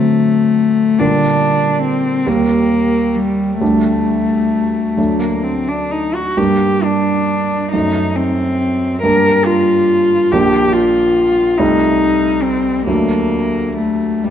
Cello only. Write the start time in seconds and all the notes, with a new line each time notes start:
Already playing: A3
1.00 D4
1.83 C4
2.27 A#3
3.14 G3
3.60 A3
5.20 A#3
5.43 C4
5.68 D4
5.91 D#4
6.14 F#4
6.37 G4
6.84 D4
7.72 D#4
8.16 C4
9.03 A#4
9.45 F4
10.31 G4
10.73 F4
11.58 D#4
12.42 C4
12.88 A#3
13.77 A3
14.25 G3